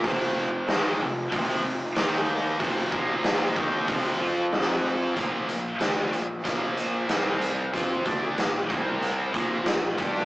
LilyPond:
<<
  \new Staff \with { instrumentName = "Distorted electric guitar" } { \clef bass \time 4/4 \key bes \lydian \tempo 4 = 93 <f, c f>4 <aes, ees aes>8 <f, c>8 <f, c f>8 <f, c>8 <ees bes ees'>4 | <f, c f>8 <bes, f bes>4 <ees bes ees'>8 <f, c f>8 <f c' f'>4. | <bes, f bes>8 <bes, f>8 <d a d'>8 <bes, f>8 <bes, f bes>4 <c g c'>4 | <f c' f'>8 <d a d'>8 <bes, f>8 <c g c'>4 <bes, f bes>8 <bes, f>8 <g d' g'>8 | }
  \new Staff \with { instrumentName = "Fingered electric bass" } { \clef bass \time 4/4 \key bes \lydian f,,4 aes,,8 f,,8 f,,8 f,,8 ees,4 | f,,8 bes,,4 ees,8 f,,8 f,4. | bes,,8 bes,,8 d,8 bes,,8 bes,,4 c,4 | f,8 d,8 bes,,8 c,4 bes,,8 bes,,8 g,8 | }
  \new DrumStaff \with { instrumentName = "Drums" } \drummode { \time 4/4 <hho bd>4 <hho sn>4 <hho bd>4 <hho sn>4 | <hho bd>8 bd8 <hho sn>8 bd8 <hho bd>4 <hho sn>4 | <hh bd>8 hh8 <hh sn>16 sn16 hh8 <hh bd>8 hh8 <hh sn>8 hh8 | <hh bd>8 <hh bd>8 <hh sn>8 <hh bd>8 hh8 <hh bd>8 <hh sn>8 <hh bd>16 sn16 | }
>>